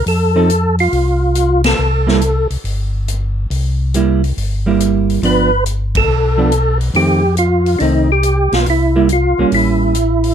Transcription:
0.06 tonewheel organ F2 A4, open hi-hat
0.36 hollow-body jazz guitar F3 C4 D#4 A4
0.50 closed hi-hat
0.79 tonewheel organ F4, open hi-hat
0.92 tonewheel organ C2, open hi-hat
1.35 closed hi-hat
1.64 tonewheel organ A4, snare, ride
1.79 tonewheel organ C2
2.07 hollow-body jazz guitar G3 A#3 E4, snare
2.21 closed hi-hat
2.50 tonewheel organ C2, open hi-hat
2.64 tonewheel organ G1, open hi-hat
3.08 closed hi-hat
3.50 tonewheel organ C2, open hi-hat
3.94 hollow-body jazz guitar G3 A#3 E4, closed hi-hat
4.24 open hi-hat
4.37 tonewheel organ G1, open hi-hat
4.66 hollow-body jazz guitar G3 A#3 E4
4.80 closed hi-hat
5.10 open hi-hat
5.22 tonewheel organ G1 B4, hollow-body jazz guitar F3 B3 D4, open hi-hat
5.66 closed hi-hat
5.95 tonewheel organ A4, kick, ride
6.08 tonewheel organ B1
6.38 hollow-body jazz guitar F3 B3 D4
6.52 closed hi-hat
6.81 open hi-hat
6.94 tonewheel organ F2 G4, hollow-body jazz guitar D#3 A3 C4, open hi-hat
7.37 tonewheel organ F4, closed hi-hat
7.66 open hi-hat
7.79 tonewheel organ C2 D4 D#4, hollow-body jazz guitar D#3 A3 C4, open hi-hat
8.12 tonewheel organ G4
8.23 closed hi-hat
8.52 tonewheel organ B1 F4, snare, open hi-hat
8.66 tonewheel organ C2 E4, open hi-hat
8.96 hollow-body jazz guitar G3 A#3 E4
9.09 tonewheel organ F4, closed hi-hat
9.38 tonewheel organ C2, hollow-body jazz guitar G3 A#3 C#4
9.52 tonewheel organ A1 E4, open hi-hat
9.95 closed hi-hat
10.24 open hi-hat

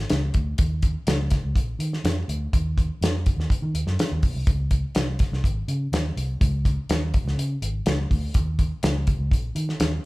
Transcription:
0.10 fingered electric bass C#2, snare, closed hi-hat
0.34 fingered electric bass D2, kick, closed hi-hat
0.58 fingered electric bass D#2, kick, closed hi-hat
0.82 kick, closed hi-hat
1.07 fingered electric bass C#2, snare, closed hi-hat
1.30 kick, snare, closed hi-hat
1.44 fingered electric bass C#2
1.56 fingered electric bass A#1, kick, closed hi-hat
1.79 fingered electric bass D#3, closed hi-hat
1.93 snare
2.04 fingered electric bass F2, snare, closed hi-hat
2.28 fingered electric bass D2, closed hi-hat
2.53 fingered electric bass D#2, kick, closed hi-hat
2.78 kick, closed hi-hat
3.01 fingered electric bass F2, snare, closed hi-hat
3.26 kick, closed hi-hat
3.37 fingered electric bass D#2, snare
3.50 kick, closed hi-hat
3.62 fingered electric bass D#3
3.74 fingered electric bass D#2, closed hi-hat
3.86 fingered electric bass F#2, snare
3.99 snare, closed hi-hat
4.12 fingered electric bass D#2
4.23 fingered electric bass B1, kick, open hi-hat
4.35 fingered electric bass C2
4.47 fingered electric bass C#2, kick, closed hi-hat
4.71 kick, closed hi-hat
4.95 fingered electric bass C2, snare, closed hi-hat
5.19 kick, snare, closed hi-hat
5.32 fingered electric bass C2, snare
5.43 fingered electric bass G#1, kick, closed hi-hat
5.68 fingered electric bass C#3, closed hi-hat
5.92 fingered electric bass D#2, snare, closed hi-hat
6.17 fingered electric bass C2, closed hi-hat
6.41 fingered electric bass C#2, kick, closed hi-hat
6.65 kick, closed hi-hat
6.89 fingered electric bass D#2, snare, closed hi-hat
7.14 kick, closed hi-hat
7.25 fingered electric bass C#2, snare
7.37 fingered electric bass C#3, closed hi-hat
7.62 fingered electric bass G#1, closed hi-hat
7.86 fingered electric bass C#2, snare, closed hi-hat
8.10 fingered electric bass D2, kick, open hi-hat
8.34 fingered electric bass D#2, kick, closed hi-hat
8.59 kick, closed hi-hat
8.83 fingered electric bass C#2, snare, closed hi-hat
9.07 kick, closed hi-hat
9.19 fingered electric bass C#2
9.31 fingered electric bass A#1, kick, closed hi-hat
9.55 fingered electric bass D#3, closed hi-hat
9.69 snare
9.80 fingered electric bass D#2, snare, closed hi-hat

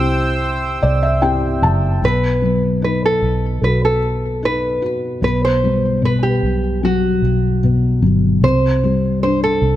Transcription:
Already playing: fingered electric bass C2, felt piano C3 C4 E4 G4, nylon-string guitar E4 E5, analog synth pad C5 G5 E6
0.83 fingered electric bass C2, felt piano D5
1.03 felt piano E5
1.22 felt piano C4 E4 G4 G5
1.62 fingered electric bass F#1, felt piano A5
2.02 fingered electric bass B1, felt piano B2, nylon-string guitar B4
2.42 felt piano F#3
2.82 felt piano D#4, nylon-string guitar B4
3.06 nylon-string guitar A4
3.22 fingered electric bass B1
3.62 fingered electric bass B1, felt piano F#4, nylon-string guitar B4
3.85 nylon-string guitar A4
4.43 felt piano D#4, nylon-string guitar B4
4.82 felt piano F#4
5.22 fingered electric bass B1, felt piano B2, nylon-string guitar B4
5.45 nylon-string guitar C5
5.64 felt piano G3
6.02 felt piano B2, nylon-string guitar B4
6.23 nylon-string guitar G4
6.43 fingered electric bass B1
6.83 felt piano F#3, nylon-string guitar F#4
7.22 fingered electric bass B1
7.64 felt piano B2
8.02 fingered electric bass G1, felt piano F#3
8.42 fingered electric bass C2, felt piano C3, nylon-string guitar C5
8.83 felt piano G3
9.23 felt piano D4, nylon-string guitar C5
9.44 nylon-string guitar A4
9.62 fingered electric bass C2

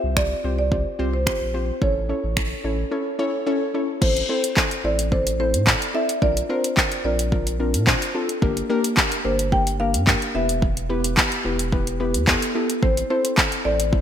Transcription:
Already playing: marimba E5
0.04 sub bass C2
0.17 synth pluck C4 F4 G4 C5, marimba D5, finger snap, kick
0.44 sub bass C2, synth pluck C4 F4 G4 C5
0.58 marimba D5
0.72 synth pluck C4 F4 G4 C5, kick
0.99 sub bass C2, synth pluck C4 F4 G4 C5
1.14 marimba C5
1.26 synth pluck C4 F4 G4 C5, finger snap, kick
1.41 sub bass A#1
1.54 synth pluck C4 F4 G4 C5
1.81 sub bass A1, synth pluck C#4 E4 A4 C#5, marimba C#5, kick
2.09 synth pluck C#4 E4 A4 C#5
2.24 sub bass A1
2.37 synth pluck C#4 E4 A4 C#5, finger snap, kick
2.64 sub bass A1, synth pluck C#4 E4 A4 C#5
2.91 synth pluck C#4 E4 A4 C#5
3.19 synth pluck C#4 E4 A4 C#5
3.46 synth pluck C#4 E4 A4 C#5
3.74 synth pluck C#4 E4 A4 C#5
4.01 sub bass A1, synth pluck C4 E4 A4 C5, marimba C5, kick, crash
4.17 closed hi-hat
4.29 synth pluck C4 E4 A4 C5, marimba C5
4.44 closed hi-hat
4.57 synth pluck C4 E4 A4 C5, kick, clap
4.71 closed hi-hat
4.84 sub bass A1, synth pluck C4 E4 A4 C5, marimba D5
4.99 closed hi-hat
5.12 synth pluck C4 E4 A4 D5, marimba C5, kick
5.27 closed hi-hat
5.39 synth pluck C4 E4 A4 C5, marimba C5
5.54 sub bass A2, closed hi-hat
5.67 synth pluck C4 E4 A4 D5, kick, clap
5.82 closed hi-hat
5.94 synth pluck C4 E4 A4 D5, marimba E5
6.09 closed hi-hat
6.22 sub bass A#1, synth pluck C4 D4 F4 A#4, marimba D5, kick
6.37 closed hi-hat
6.49 synth pluck C4 D4 F4 A#4, marimba C5
6.64 closed hi-hat
6.77 synth pluck C4 D4 F4 A#4, kick, clap
6.92 closed hi-hat
7.04 sub bass A#1, synth pluck C4 D4 F4 A#4, marimba D5
7.19 closed hi-hat
7.32 synth pluck C4 D4 F4 A#4, kick
7.47 closed hi-hat
7.60 synth pluck C4 D4 F4 A#4
7.74 sub bass A#2, closed hi-hat
7.87 synth pluck C4 D4 F4 C5, kick, clap
8.02 closed hi-hat
8.14 synth pluck C4 D4 F4 A4
8.29 closed hi-hat
8.42 sub bass G1, synth pluck A#3 D4 G4 A#4, kick
8.57 closed hi-hat
8.69 synth pluck A#3 D4 G4 A#4
8.84 closed hi-hat
8.97 synth pluck A#3 D4 G4 A#4, kick, clap
9.12 closed hi-hat
9.24 sub bass G1, synth pluck A#3 D4 G4 A#4, marimba C5
9.39 closed hi-hat
9.52 synth pluck A#3 D4 G4 A#4, marimba G5, kick
9.67 closed hi-hat
9.80 synth pluck A#3 D4 G4 A#4, marimba F5
9.94 sub bass G2, closed hi-hat
10.07 synth pluck A#3 D4 G4 A#4, kick, clap
10.22 closed hi-hat
10.35 sub bass E1, synth pluck B3 E4 G4 B4, marimba E5
10.49 closed hi-hat
10.62 kick
10.77 closed hi-hat
10.89 synth pluck B3 E4 G4 B4
11.04 closed hi-hat
11.17 synth pluck B3 E4 G4 B4, kick, clap
11.32 closed hi-hat
11.45 sub bass E1, synth pluck B3 E4 G4 B4
11.59 closed hi-hat
11.72 synth pluck B3 E4 G4 B4, kick
11.87 closed hi-hat
12.00 synth pluck B3 E4 G4 B4
12.14 sub bass E2, closed hi-hat
12.27 synth pluck B3 E4 G4 A4, kick, clap
12.42 closed hi-hat
12.55 synth pluck B3 E4 G4 A4
12.70 closed hi-hat
12.82 sub bass A1, synth pluck C4 E4 A4 C5, marimba C5, kick
12.97 closed hi-hat
13.10 synth pluck C4 E4 A4 C5, marimba C5
13.25 closed hi-hat
13.37 synth pluck C4 E4 A4 C5, kick, clap
13.52 closed hi-hat
13.65 sub bass A1, synth pluck C4 E4 A4 C5, marimba D5
13.80 closed hi-hat
13.92 synth pluck C4 E4 A4 C5, kick

